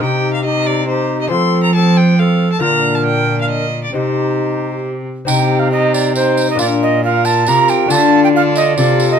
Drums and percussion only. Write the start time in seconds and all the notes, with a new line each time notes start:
5.28 tambourine
5.94 tambourine
6.15 tambourine
6.37 tambourine
6.59 tambourine
7.25 tambourine
7.46 tambourine
7.68 tambourine
7.90 tambourine
8.55 tambourine
8.78 tambourine
9.00 tambourine